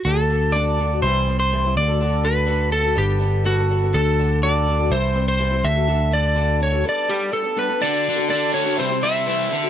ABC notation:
X:1
M:4/4
L:1/16
Q:1/4=124
K:D
V:1 name="Electric slide guitar"
A4 d4 =c3 c3 d2- | d2 B4 A2 G4 F4 | A4 d4 =c3 c3 e2- | e2 d4 c2 d2 G2 A2 B2 |
d4 d2 c2 =c2 e6 |]
V:2 name="Steel-string acoustic guitar"
[D,DFA]2 [D,DFA]2 [D,DFA]2 [D,DFA] [DFA] [=C,E,G,=CE=c]2 [G,CEc]2 [C,E,G,CEc] [G,CEc] [D,DFA] [DFA] | [D,DFA]2 [D,DFA]2 [D,DFA]2 [D,DFA] [DFA] [G,B,DA]2 [G,B,DA]2 [G,B,DA] [B,DA] [G,B,DA] [B,DA] | [D,DFA]2 [D,DFA]2 [D,DFA]2 [D,DFA] [DFA] [=C,E,G,=CE=c]2 [G,CEc]2 [C,E,G,CEc] [G,CEc] [D,DFA] [DFA] | [D,DFA]2 [D,DFA]2 [D,DFA]2 [D,DFA] [DFA] [G,B,DA]2 [G,B,DA]2 [G,B,DA] [B,DA] [G,B,DA] [B,DA] |
[D,DFA]3 [DFA] [D,DFA]3 [DFA] [=C,E,G,=CE=c] [G,CEc] [G,CEc]2 [C,E,G,CEc]2 [D,DFA] [DFA] |]
V:3 name="Overdriven electric guitar" clef=bass
z16 | z16 | z16 | z16 |
D,2 D,2 D2 F2 =C,2 =C2 E2 D,2 |]
V:4 name="Fingered electric bass" clef=bass
D,,8 =C,,6 D,,2- | D,,8 G,,,8 | D,,8 =C,,6 D,,2- | D,,8 z8 |
z16 |]